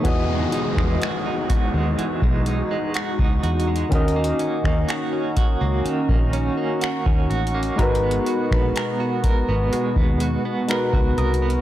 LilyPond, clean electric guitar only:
\new Staff \with { instrumentName = "Clean electric guitar" } { \time 4/4 \key e \lydian \tempo 4 = 62 e16 gis16 dis'16 gis16 fis'16 dis'16 fis'16 gis16 e16 gis16 dis'16 gis16 fis'16 dis'16 fis'16 gis16 | dis16 ais16 cis'16 ais16 fis'16 cis'16 fis'16 ais16 dis16 ais16 cis'16 ais16 fis'16 cis'16 fis'16 ais16 | gis16 b16 fis'16 b16 ais'16 fis'16 ais'16 b16 gis16 b16 fis'16 b16 ais'16 fis'16 ais'16 b16 | }